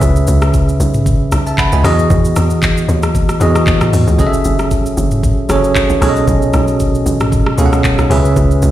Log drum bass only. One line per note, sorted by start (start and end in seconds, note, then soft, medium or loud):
0.02 0.25 C#2 loud
0.28 0.76 C#2 loud
0.80 1.17 B1 loud
1.32 1.56 B1 medium
1.73 1.83 C#2 loud
1.84 2.08 E2 loud
2.10 2.34 E2 loud
2.36 2.85 E2 medium
2.88 3.25 D#2 loud
3.41 3.65 E2 loud
3.67 3.80 D#2 medium
3.93 4.06 E2 medium
4.07 4.18 C#2 medium
4.19 4.43 F#1 loud
4.45 4.93 F#1 loud
4.97 5.34 F#1 loud
5.49 5.73 F#1 medium
5.90 6.01 A1 loud
6.02 6.25 B1 loud
6.28 6.52 B1 loud
6.54 7.02 B1 loud
7.06 7.43 A1 loud
7.58 7.82 C#2 medium
7.99 8.09 B1 medium
8.10 8.34 C#2 loud
8.36 8.60 C#2 loud
8.62 8.71 C#2 loud